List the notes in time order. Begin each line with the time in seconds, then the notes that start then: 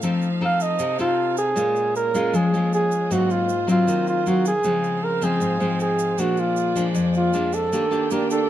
Already playing: F5
0.02 F3 C4 D#4 A4, shaker
0.22 shaker
0.41 C4 D#4 A4 F5
0.60 D#5, shaker
0.79 C3, shaker
0.99 C4 D#4 F4 A4, shaker
1.37 G#4, shaker
1.55 A#2 G#3 A#3 C#4 F4 G#4 C#5, shaker
1.76 shaker
1.96 A#4, shaker
2.14 G#3 C#4 F4, shaker
2.33 F3 G#4, shaker
2.53 G#3 C#4 F4, shaker
2.73 G#4, shaker
2.91 shaker
3.10 G#2 F#3 C4 F4 F#4 C5, shaker
3.30 F4, shaker
3.49 shaker
3.67 F#3 C4 F4, shaker
3.87 D#3, shaker
4.07 F4, shaker
4.26 F#3 C4 F4 F#4, shaker
4.45 G#4, shaker
4.64 C#3 F3 G#3 C4 C5 F5, shaker
4.84 shaker
5.04 A#4
5.21 F3 G#3 C4 G#4, shaker
5.40 G#2, shaker
5.60 F3 G#3 C4, shaker
5.80 G#4, shaker
5.99 shaker
6.18 A#2 F3 G#3 A#3 D4 F#4 G#4 D5, shaker
6.37 F4, shaker
6.56 shaker
6.76 F3 G#3 D4, shaker
6.94 F2, shaker
7.14 F4, shaker
7.33 F3 G#3 D4, shaker
7.53 A4, shaker
7.72 D#3 A#3 D4 G4 D5 G5, shaker
7.91 A#3 D4 G4, shaker
8.11 A#3 D4 G4 A#4, shaker
8.30 A4, shaker